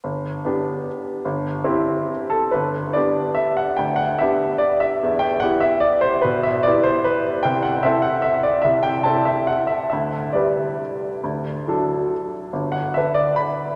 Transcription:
\new Staff \with { instrumentName = "Upright piano" } { \time 3/4 \key g \major \tempo 4 = 144 << { r2. | r2 r8 a'8 | b'4 d''4 e''8 fis''8 | g''8 fis''8 e''4 d''8 e''8~ |
e''8 g''8 fis''8 e''8 d''8 c''8 | b'8 e''8 d''8 c''8 b'8 r8 | g''8 fis''8 e''8 fis''8 e''8 d''8 | e''8 g''8 a''8 e''8 fis''8 e''8 |
e''4 d''2~ | d''2~ d''8 r8 | r8 fis''8 e''8 d''8 b''4 | } \\ { g,,4 <b d' g'>2 | g,,4 <c' e' g'>2 | g,,4 <b d' g'>2 | d,4 <b d' g'>2 |
e,4 <b e' g'>2 | b,4 <b e' g'>2 | c,4 <c' e' a'>2 | c,4 <c' e' a'>2 |
d,4 <g g' b'>2 | d,4 <fis d' a'>2 | g,,4 <d d' b'>2 | } >> }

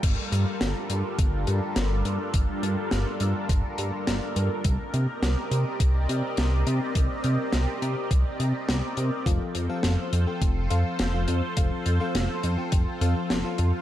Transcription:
<<
  \new Staff \with { instrumentName = "Analog synth pad" } { \time 4/4 \key g \minor \tempo 4 = 104 <g d' f' a' bes'>1~ | <g d' f' a' bes'>1 | <c' g' d'' ees''>1~ | <c' g' d'' ees''>1 |
<f' a' c''>1~ | <f' a' c''>1 | }
  \new Staff \with { instrumentName = "FM electric piano" } { \time 4/4 \key g \minor r1 | r1 | r1 | r1 |
<f c' f' a' f''>8. <f c' f' a' f''>4 <f c' f' a' g''>8. <f c' f' a' f''>8. <f c' f' a' f''>8. | <f c' f' a' f''>8. <f c' f' a' f''>4 <f c' f' a' g''>8. <f c' f' a' f''>8. <f c' f' a' f''>8. | }
  \new Staff \with { instrumentName = "Analog synth bass" } { \clef bass \time 4/4 \key g \minor g,,8 g,8 g,,8 g,8 g,,8 g,8 g,,8 g,8 | g,,8 g,8 g,,8 g,8 g,,8 g,8 g,,8 g,8 | c,8 c8 c,8 c8 c,8 c8 c,8 c8 | c,8 c8 c,8 c8 c,8 c8 c,8 c8 |
f,,8 f,8 f,,8 f,8 f,,8 f,8 f,,8 f,8 | f,,8 f,8 f,,8 f,8 f,,8 f,8 f,,8 f,8 | }
  \new DrumStaff \with { instrumentName = "Drums" } \drummode { \time 4/4 <cymc hh bd>8 hh8 <hh sn>8 hh8 <hh bd>8 hh8 <hh sn>8 hh8 | <hh bd>8 hh8 <hh sn>8 hh8 <hh bd>8 hh8 <hh sn>8 hh8 | <hh bd>8 hh8 <hh sn>8 hh8 <hh bd>8 hh8 <hh sn>8 hh8 | <hh bd>8 hh8 <hh sn>8 hh8 <hh bd>8 hh8 <hh sn>8 hh8 |
<hh bd>8 hh8 <hh sn>8 hh8 <hh bd>8 hh8 <hh sn>8 hh8 | <hh bd>8 hh8 <hh sn>8 hh8 <hh bd>8 hh8 <hh sn>8 hh8 | }
>>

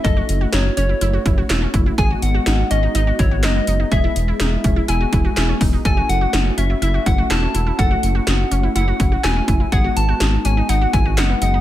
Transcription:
<<
  \new Staff \with { instrumentName = "Soft synth lead" } { \time 4/4 \key fis \dorian \tempo 4 = 124 dis''4 cis''8 cis''4. r4 | gis''8 fis''4 dis''8 dis''8 cis''8 dis''4 | e''2 gis''4. r8 | gis''8 fis''4 e''8 e''8 fis''8 a''4 |
fis''2 fis''4 gis''4 | fis''8 a''4 gis''8 fis''8 gis''8 fis''8 fis''8 | }
  \new Staff \with { instrumentName = "Synth arpeggio sound" } { \time 4/4 \key fis \dorian a'16 fis'8 fis'16 dis'8 cis'16 e'16 e'16 fis'16 e'16 fis'16 e'16 cis'16 e'16 e'16 | gis'16 fis'8 fis'16 dis'8 cis'16 dis'16 dis'16 fis'16 e'16 fis'16 dis'16 b16 dis'16 dis'16 | gis'16 e'8 e'16 dis'8 cis'16 e'16 e'16 fis'16 e'16 fis'16 e'16 cis'16 dis'16 dis'16 | a'16 fis'8 fis'16 dis'8 cis'16 e'16 e'16 fis'16 e'16 fis'16 e'16 cis'16 e'16 e'16 |
a'16 fis'8 fis'16 dis'8 cis'16 e'16 e'16 fis'16 e'16 fis'16 e'16 cis'16 e'16 e'16 | gis'16 fis'8 fis'16 dis'8 cis'16 dis'16 dis'16 fis'16 e'16 fis'16 dis'16 b16 dis'16 dis'16 | }
  \new Staff \with { instrumentName = "Analog polysynth" } { \time 4/4 \key fis \dorian <a cis' e' fis'>1 | <gis b dis' fis'>1 | <gis b e' gis'>1 | <a cis' e' fis'>1~ |
<a cis' e' fis'>1 | <gis b dis' fis'>1 | }
  \new Staff \with { instrumentName = "Analog synth bass" } { \clef bass \time 4/4 \key fis \dorian fis,,8 fis,,8 fis,,8 fis,,8 fis,,8 fis,,8 e,,8 fis,,8 | gis,,8 gis,,8 gis,,8 gis,,8 gis,,8 gis,,8 fis,,8 fis,,8 | e,,8 e,,8 e,,8 e,,8 e,,8 e,,8 e,,8 e,,8 | fis,,8 fis,,8 fis,,8 fis,,8 fis,,8 fis,,8 e,,8 e,,8 |
fis,,8 fis,,8 fis,,8 fis,,8 fis,,8 fis,,8 e,,8 fis,,8 | gis,,8 gis,,8 gis,,8 gis,,8 gis,,8 gis,,8 fis,,8 fis,,8 | }
  \new DrumStaff \with { instrumentName = "Drums" } \drummode { \time 4/4 <hh bd>8 hh8 <hh sn>8 hh8 hh8 <hh bd>8 <hc hh sn>8 <hh bd>8 | <hh bd>8 hh8 <hh sn>8 hh8 hh8 <hh bd>8 <hc hh sn>8 hh8 | <hh bd>8 hh8 <hh sn>8 <hh bd>8 hh8 <hh bd>8 <hc hh sn>8 <hho bd>8 | <hh bd>8 hh8 <hh sn>8 hh8 hh8 <hh bd>8 <hc hh sn>8 hh8 |
<hh bd>8 hh8 <hh sn>8 hh8 hh8 <hh bd>8 <hc hh sn>8 <hh bd>8 | <hh bd>8 hh8 <hh sn>8 hh8 hh8 <hh bd>8 <hc hh sn>8 hh8 | }
>>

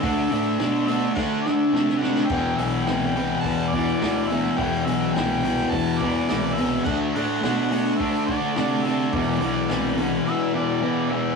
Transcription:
<<
  \new Staff \with { instrumentName = "Harmonica" } { \time 4/4 \key e \minor \tempo 4 = 105 e''4. e''8 fis''8 e''4 fis''16. e''32 | g''8 e''8 g''4 a''8 d''4 e''8 | g''8 e''8 g''4 a''8 d''4 e''8 | fis''8 fis''4. e''8 d''4 e''8 |
d''4. r8 e''8 d''4 e''8 | }
  \new Staff \with { instrumentName = "Distorted electric guitar" } { \clef bass \time 4/4 \key e \minor <d a d'>8 <d a d'>8 <d a d'>8 <d a d'>8 <d a d'>8 <d a d'>8 <d a d'>8 <d a d'>8 | <e, b, e>8 <e, b, e>8 <e, b, e>8 <e, b, e>8 <e, b, e>8 <e, b, e>8 <e, b, e>8 <e, b, e>8 | <e, b, e>8 <e, b, e>8 <e, b, e>8 <e, b, e>8 <e, b, e>8 <e, b, e>8 <e, b, e>8 <e, b, e>8 | <d a d'>8 <d a d'>8 <d a d'>8 <d a d'>8 <d a d'>8 <d a d'>8 <d a d'>8 <d a d'>8 |
<e, b, e>8 <e, b, e>8 <e, b, e>8 <e, b, e>8 <e, b, e>8 <e, b, e>8 <e, b, e>8 <e, b, e>8 | }
  \new Staff \with { instrumentName = "Fingered electric bass" } { \clef bass \time 4/4 \key e \minor d,8 a,8 b,4 d4 c4 | e,,8 b,,8 c,4 e,4 d,4 | e,,8 b,,8 c,4 e,4 c,4 | d,8 a,8 b,4 d4 c4 |
e,,8 b,,8 c,4 r2 | }
  \new DrumStaff \with { instrumentName = "Drums" } \drummode { \time 4/4 <hho bd>8 hho8 <hho sn>8 hho8 <bd sn>8 sn8 sn16 sn16 sn16 sn16 | <cymc bd>8 hho8 <hho sn>8 hho8 <hho bd>8 <hho bd>8 <hho sn>8 hho8 | <hho bd>8 hho8 <hho sn>8 hho8 <hho bd>8 <hho bd>8 <hho sn>8 hho8 | <cymc bd>8 hho8 <hho sn>8 hho8 <hho bd>8 <hho bd>8 <hho sn>8 hho8 |
<hho bd>8 hho8 <hho sn>8 hho8 r4 r4 | }
>>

